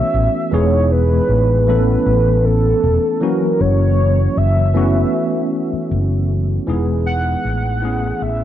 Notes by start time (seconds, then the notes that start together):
Already playing: E3 A3 B3 C#4 F#4 E5
0.14 A1
0.51 E1 E3 G#3 B3 D#4 G#4 C#5
0.92 B4
1.29 A1
1.67 E3 A3 B3 C#4 A4 B4
2.06 A1
2.45 A4
2.83 E1
3.20 E3 F#3 A#3 C#4 F#4 A#4
3.60 F#1 C#5
4.37 F#1 E5
4.74 E3 A3 B3 C#4 F#4
5.73 muted fretless electric bass stroke
5.91 F#1
6.67 E1 E3 G#3 B3 D#4 G#4
7.06 F#5
7.45 A1
7.82 E3 A3 B3 C#4 G#4
8.22 A1 E5